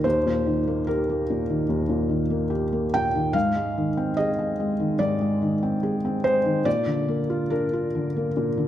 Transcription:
Already playing: D#3
0.04 D#2 C5
0.26 A#2
0.46 D#3
0.67 A#3
0.87 G4 A#4
1.09 A#3
1.30 A#2
1.50 D#3
1.69 D#2
1.89 A#2
2.09 D#3
2.30 A#3
2.50 G4
2.72 A#3
2.94 A#2 G5
3.15 D#3
3.33 G#2 F5
3.55 G#3
3.78 D#3
3.97 C4
4.17 G#4 D#5
4.39 C4
4.60 G#3
4.80 D#3
4.99 G#2 D5
5.21 G#3
5.42 D#3
5.63 C4
5.83 G#4
6.05 C4
6.24 G#3 C5
6.45 D#3
6.65 A#2 D5
6.87 D3
7.08 A#3
7.30 F4
7.50 D4 A#4
7.73 F4
7.95 D3
8.16 A#3
8.37 A#2
8.58 D3

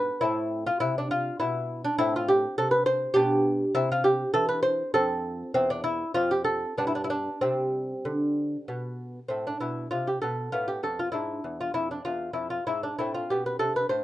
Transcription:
Already playing: G#2 B3 B4
0.21 A2 C4 E4
0.66 F4
0.80 C3 E4
0.98 D4
1.11 F4
1.40 B2 E4
1.85 D4
1.98 A2 C4 E4
2.16 F4
2.28 G4
2.58 C3 A4
2.71 B4
2.86 C5
3.14 B2 D4 G4
3.75 C3 C4 E4
3.92 F4
4.04 G4
4.34 E3 A4
4.49 B4
4.63 C5
4.94 F2 C4 A4
5.54 E2 C4
5.70 D4
5.84 E4
6.14 F2 C4 F4
6.31 G4
6.44 A4
6.78 G2 B3 D4
6.87 E4
6.95 D4
7.04 E4
7.10 D4
7.41 C3 G3 C4
8.05 D3
8.68 B2
9.28 A2 C4
9.47 D4
9.60 B2 E4
9.91 C3 F4
10.07 G4
10.22 B2 A4
10.52 A2 B3 F4
10.68 G4
10.83 F2 A4
10.99 F4
11.12 G#2 D4 E4
11.44 E2
11.61 F4
11.74 F2 E4
11.91 D4
12.05 E2 F4
12.33 F2 E4
12.50 F4
12.67 G#2 E4
12.83 D4
12.99 A2 C4 E4
13.14 F4
13.30 B2 G4
13.46 B4
13.59 C3 A4
13.76 B4
13.89 A2 C5

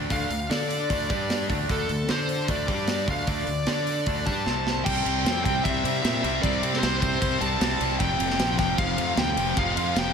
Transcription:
0.10 D2 D3 A3 D4 F5, kick, open hi-hat
0.30 D2 D3 A3, open hi-hat
0.49 D3 D4 A4 D5, snare, open hi-hat
0.70 open hi-hat
0.90 D2 D3 A3 D4, kick, open hi-hat
1.10 G2 G3 D4 G4, kick, open hi-hat
1.30 snare, open hi-hat
1.50 D2 D3 A3 D4, kick, open hi-hat
1.69 D2 D3 A3 D4 A4, kick, open hi-hat
1.89 D2 D3 A3, open hi-hat
2.09 D3 D4 A4 C5 D5, snare, open hi-hat
2.29 open hi-hat
2.48 D2 D3 A3 D4 D5, kick, open hi-hat
2.67 G2 G3 D4 G4, kick, open hi-hat
2.87 D5, snare, open hi-hat
3.08 D2 D3 A3 D4 F5, kick, open hi-hat
3.27 D2 D3 A3 D4 D5, kick, open hi-hat
3.47 D2 D3 A3, open hi-hat
3.67 D3 D4 A4 D5, snare, open hi-hat
3.87 open hi-hat
4.06 D2 D3 A3 D4, kick, open hi-hat
4.26 G2 G3 D4 G4 A5, kick, open hi-hat
4.46 C2 C3 G3 C4, snare
4.67 snare
4.85 C2 C3 G3 C4 G5, kick, crash
5.05 C2 C3 G3 C4, ride
5.24 F2 C3 G3 C4, snare, ride
5.44 C2 C3 G3 C4 G5, kick, ride
5.64 C2 C3 G3 C4 E5, kick, ride
5.84 C3 G3 C4, ride
6.03 A#2 C3 G3 C4 E5, snare, ride
6.24 C2 C3 G3 C4, ride
6.42 C2 C3 G3 C4 D5, kick, ride
6.63 C3 G3 C4, ride
6.73 A4, snare
6.80 C2 C3 G3 C4 C5, snare, ride
7.01 C3 G3 C4 C5, kick, ride
7.22 C2 C3 G3 C4, kick, ride
7.41 C2 C3 G3 C4 A5, ride
7.61 C2 C3 G3 C4, snare, ride
7.80 C2 C3 G3 C4, ride
7.99 F1 F2 C3 F3 G5, kick, ride
8.19 F1 F2 C3 F3, ride
8.30 snare
8.39 A#1 F2 C3 F3, snare, ride
8.59 F1 F2 C3 F3 G5, kick, snare, ride
8.78 F1 F2 C3 F3 F5, kick, ride
8.98 F2 C3 F3, ride
9.17 D2 F2 C3 F3 G5, snare, ride
9.37 F1 F2 C3 F3, ride
9.57 F1 F2 C3 F3 F5, kick, ride
9.76 F2 C3 F3, ride
9.96 F1 F2 C3 F3 G5, snare, ride

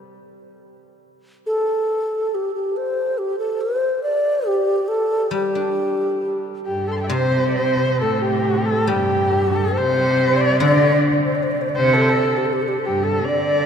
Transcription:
Already playing: G3
1.46 A4
2.35 G4
2.55 G4
2.77 C5
3.18 G4
3.39 A4
3.61 C5
4.03 D5
4.47 G4
4.88 A4
5.31 G3 G4
5.55 D4
6.66 G2 G4
6.88 A4
6.92 C6
6.97 G5 A5
7.04 E5
7.08 C3 C5 D5
7.12 C5
7.50 D5
7.56 C5
8.01 A2 A4
8.15 A4
8.21 G4
8.65 A4
8.87 G2 G3 G4
9.55 A4
9.73 C5
9.77 C3 C5
10.36 D5
10.41 D5
10.59 D3 D5
10.63 D3
11.26 C5
11.35 D5
11.43 C5
11.51 D5
11.61 C5
11.69 D5
11.76 C3 C5
11.93 A4
12.01 C5
12.09 A4
12.37 G4
12.46 A4
12.53 G4
12.62 A4
12.68 G4
12.79 A4
12.85 G2 G4
13.03 A4
13.25 D3 D5

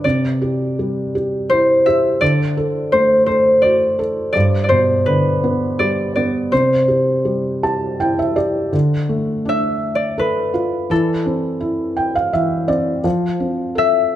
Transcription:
Already playing: G4 B4
0.04 C3 D5
0.42 G4
0.79 G3
1.15 G4
1.50 E4 C5
1.86 G4 E5
2.21 D3 D5
2.57 A4
2.92 A3 C5
3.26 A4 C5
3.62 F#4 D5
3.99 A4
4.33 G2 D5
4.64 D5
4.69 B2 C5
5.06 D3 B4
5.44 B3
5.79 G3 D5
6.16 B3 D5
6.52 C3 C5
6.88 G4
7.25 G3
7.63 G4 A5
8.00 E4 G5
8.19 E5
8.36 G4 D5
8.73 D3
9.09 A3
9.45 D4 E5
9.95 D5
10.18 A4 B4
10.54 F4
10.90 E3 A4
11.26 C4
11.60 E4
11.97 G5
12.15 F5
12.33 E3 E5
12.68 C4 D5
13.04 F3
13.40 C4
13.75 A4 E5

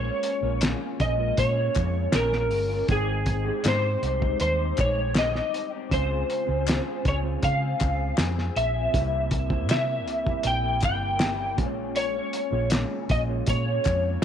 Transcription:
Already playing: G#3 A#3 C#4 F4 A#4 C#5
0.04 G#3 C#4 F4
0.23 closed hi-hat
0.42 A#1 G#3 A#3 C#4 F4 A#4
0.46 G#3
0.61 A#2 G#3 C#4 F4, snare, clap, closed hi-hat
0.80 G#3 C#4 F4
0.99 A#1 A#2 G#3 C#4 F4 D#5, kick, closed hi-hat
1.17 G#3 A#3 C#4 F4 A#4
1.37 A#2 C#5, kick, closed hi-hat
1.55 G#3 C#4 F4
1.73 F2 A#2 G#3 C#4 F4, kick, clap, closed hi-hat
2.12 A#1 A#2 G#3 C#4 F4 A#4, snare, clap, closed hi-hat
2.31 G#3 C#4 F4, snare
2.51 G1, open hi-hat
2.69 G#3 C#4 F4
2.87 G#1 G#3 C4 D#4 G4 C5 G5, kick, closed hi-hat
2.91 G#4
3.09 C4 D#4
3.26 kick, closed hi-hat
3.44 G#3 C4 D#4 G4
3.48 C5
3.63 G#2 G#3 C4 D#4 G4, snare, clap, closed hi-hat
3.68 C5
3.81 C4 D#4 G4
4.00 C2 G#3 C4 D#4 G4, closed hi-hat
4.20 G3 G#3 D#4 G4 D#5, kick
4.40 D#2 C5, closed hi-hat
4.56 C4 D#4 G4
4.75 A#1 G#3 D#4 G4, kick, clap, closed hi-hat
4.80 C#5
5.14 G#3 C4 D#4 G4, snare, clap, closed hi-hat
5.18 D#5
5.33 C4 D#4 G4, snare
5.54 closed hi-hat
5.70 C4 D#4 G4
5.89 C#2 C#3 G#3 C4 C#4 F4 G#4 C5, kick, closed hi-hat
6.30 closed hi-hat
6.46 C#2 G#3 C4 C#4 F4 G#4 C5
6.66 C#3 C4 F4 G#4, snare, clap, closed hi-hat
6.83 C4 F4 G#4
7.04 C#2 C#3 F4 G#4, kick, closed hi-hat
7.08 C#5
7.22 G#3 C4 C#4 F4 C5
7.43 C#3 F5, kick, closed hi-hat
7.60 C4 F4 G#4
7.78 C#2 C#3 C4 F4 G#4, kick, clap, closed hi-hat
8.16 F2 C#3 C4 F4 G#4, snare, clap, closed hi-hat
8.35 C4 F4 G#4, snare
8.56 A#1 E5, closed hi-hat
8.73 C4 F4 G#4
8.92 C2 C3 G3 A#3 C4 E4 G4 C5, kick, closed hi-hat
9.31 kick, closed hi-hat
9.48 G3 A#3 C4 E4 G4 C5, kick
9.67 C3 G3 A#3 E4, clap, closed hi-hat
9.71 E5, snare
10.04 C2 C3 G3 A#3 E4, closed hi-hat
10.24 A#3 C4 E4 G4 A#4, kick
10.43 A#1 G5, closed hi-hat
10.61 A#3 E4
10.65 G3
10.80 G1 C3 G3 A#3, kick, clap, closed hi-hat
10.85 E4 G5
11.19 C3 G3 A#3 E4, snare, clap, closed hi-hat
11.37 G3 A#3 E4
11.56 A#1 A#2 G#3 A#3 C#4 F4 G#4 C5, kick, closed hi-hat
11.66 C#5
11.96 C#5, closed hi-hat
12.14 G#3 C#4 F4
12.33 closed hi-hat
12.51 A#1 A#3 C#4 F4 G#4 C#5
12.55 G#3
12.70 A#2 G#3 C#4 F4, snare, clap, closed hi-hat
13.09 A#1 A#2 G#3 C#4 F4 D#5, kick, closed hi-hat
13.28 A#3 C#4 F4 G#4 C#5
13.46 A#2 C#5, kick, closed hi-hat
13.66 G#3 C#4 F4
13.84 F2 A#2 G#3 C#4, kick, clap, closed hi-hat
13.88 F4

